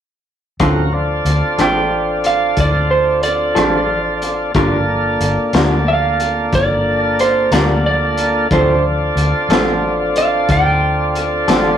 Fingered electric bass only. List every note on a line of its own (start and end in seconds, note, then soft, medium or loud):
0.60 1.21 D2 medium
1.25 1.40 D2 medium
1.58 2.53 A1 medium
2.57 3.52 D2 medium
3.56 4.51 A1 medium
4.55 5.17 G1 medium
5.20 5.36 G1 medium
5.53 6.49 D2 medium
6.53 7.48 G1 medium
7.51 8.47 D2 medium
8.51 9.13 D2 medium
9.15 9.31 D2 medium
9.49 10.45 A1 medium
10.49 11.44 D2 medium
11.48 11.78 A1 medium